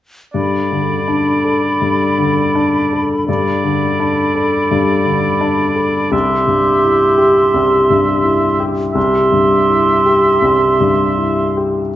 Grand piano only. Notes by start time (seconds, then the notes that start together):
0.34 G2
0.72 D3
1.08 D4
1.45 A4
1.82 G2
2.18 D3
2.55 D4
2.93 A4
3.29 G2
3.64 D3
4.00 D4
4.35 A4
4.71 G2
5.05 D3
5.41 D4
5.76 A4
6.11 C2
6.47 G2
6.84 E4
7.18 G4
7.54 C2
7.90 G2
8.24 E4
8.60 G4
8.95 C2
9.32 G2
9.69 E4
10.06 G4
10.42 C2
10.80 G2
11.18 E4
11.57 G4